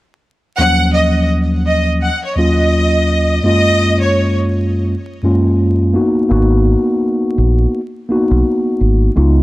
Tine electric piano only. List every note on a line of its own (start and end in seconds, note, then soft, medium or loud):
0.58 2.08 D#2 loud
0.58 2.09 F3 medium
0.58 2.08 F#3 medium
0.58 2.08 A#3 medium
0.58 2.09 C#4 medium
2.36 3.38 D#2 medium
2.36 3.38 F#3 medium
2.36 3.38 A#3 medium
2.36 3.38 C#4 medium
2.36 3.39 F4 loud
3.43 4.93 F#2 medium
3.43 4.93 G#3 medium
3.43 4.94 A#3 medium
3.43 4.94 C#4 medium
3.43 4.94 F4 loud
5.23 5.95 F#2 medium
5.23 5.95 G#3 medium
5.23 5.92 A#3 medium
5.23 5.96 C#4 medium
5.23 5.96 F4 loud
5.93 6.28 A#3 medium
5.93 6.28 B3 medium
5.93 6.28 D#4 medium
5.93 6.29 F#4 medium
6.29 7.79 A#3 medium
6.29 7.79 B3 medium
6.29 7.80 D#4 medium
6.29 7.80 F#4 loud
8.09 9.10 A#3 medium
8.09 9.10 B3 medium
8.09 9.10 D#4 medium
8.09 9.11 F#4 loud
9.16 9.43 G#3 medium
9.16 9.43 B3 medium
9.16 9.43 D#4 medium
9.16 9.43 F4 loud